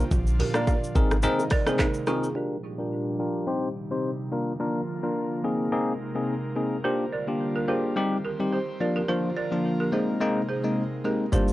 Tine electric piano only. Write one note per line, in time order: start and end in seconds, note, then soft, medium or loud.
0.54 0.73 A#3 medium
0.54 0.73 D4 medium
0.54 0.73 F4 medium
0.54 0.73 A#4 medium
0.95 1.15 C4 medium
0.95 1.16 D#4 medium
0.95 1.16 G#4 medium
0.95 1.16 A#4 medium
1.23 1.43 C4 medium
1.23 1.43 D#4 medium
1.23 1.44 G#4 medium
1.23 1.44 A#4 loud
1.67 1.85 C4 medium
1.67 1.85 D#4 medium
1.67 1.85 G#4 medium
1.67 1.85 A#4 medium
2.07 2.28 C4 medium
2.07 2.28 D#4 medium
2.07 2.28 G#4 medium
2.07 2.28 A#4 medium
2.35 2.55 D4 medium
2.35 2.56 F4 medium
2.35 2.56 G4 medium
2.35 2.56 A#4 medium
2.78 3.16 D4 medium
2.78 3.16 F4 medium
2.78 3.17 G4 medium
2.78 3.17 A#4 medium
3.19 3.45 D4 medium
3.19 3.45 F4 medium
3.19 3.46 G4 medium
3.19 3.46 A#4 medium
3.47 3.67 C4 medium
3.47 3.68 D#4 medium
3.47 3.68 G4 medium
3.47 3.68 C5 loud
3.91 4.09 C4 medium
3.91 4.10 D#4 medium
3.91 4.10 G4 medium
3.91 4.10 C5 medium
4.32 4.52 A#3 medium
4.32 4.52 D4 medium
4.32 4.52 F4 medium
4.32 4.52 A#4 medium
4.60 4.80 A#3 medium
4.60 4.80 D4 medium
4.60 4.80 F4 medium
4.60 4.80 A#4 medium
5.03 5.41 A#3 medium
5.03 5.41 D4 medium
5.03 5.41 F4 medium
5.03 5.41 A#4 medium
5.44 5.70 A#3 medium
5.44 5.70 C4 medium
5.44 5.70 D#4 medium
5.44 5.70 G#4 medium
5.72 5.92 A#3 medium
5.72 5.92 C4 medium
5.72 5.92 D#4 medium
5.72 5.92 G#4 loud
6.15 6.34 A#3 medium
6.15 6.34 C4 medium
6.15 6.34 D#4 medium
6.15 6.34 G#4 medium
6.56 6.76 A#3 medium
6.56 6.76 C4 medium
6.56 6.76 D#4 medium
6.56 6.76 G#4 medium
6.84 7.04 A#3 medium
6.84 7.04 D4 medium
6.84 7.04 F4 medium
6.84 7.05 G4 loud
7.27 7.65 A#3 medium
7.27 7.65 D4 medium
7.27 7.65 F4 medium
7.27 7.66 G4 medium
7.68 7.94 A#3 medium
7.68 7.94 D4 medium
7.68 7.94 F4 medium
7.68 7.94 G4 medium
7.96 8.16 G3 medium
7.96 8.16 C4 medium
7.96 8.17 D#4 medium
7.96 8.17 G4 loud
8.40 8.58 G3 medium
8.40 8.58 C4 medium
8.40 8.58 D#4 medium
8.40 8.58 G4 medium
8.80 9.01 F3 medium
8.80 9.01 A#3 medium
8.80 9.01 D4 medium
8.80 9.01 F4 medium
9.09 9.29 F3 medium
9.09 9.29 A#3 medium
9.09 9.29 D4 medium
9.09 9.29 F4 medium
9.52 9.89 F3 medium
9.52 9.90 A#3 medium
9.52 9.90 D4 medium
9.52 9.90 F4 medium
9.92 10.18 G#3 medium
9.92 10.19 A#3 medium
9.92 10.19 C4 medium
9.92 10.19 D#4 medium
10.20 10.41 G#3 medium
10.20 10.41 A#3 medium
10.20 10.41 C4 medium
10.20 10.41 D#4 loud
10.64 10.82 G#3 medium
10.64 10.82 A#3 medium
10.64 10.82 C4 medium
10.64 10.83 D#4 medium
11.04 11.25 G#3 medium
11.04 11.25 A#3 medium
11.04 11.25 C4 medium
11.04 11.25 D#4 medium
11.32 11.53 G3 medium
11.32 11.53 A#3 medium
11.32 11.53 D4 medium
11.32 11.53 F4 loud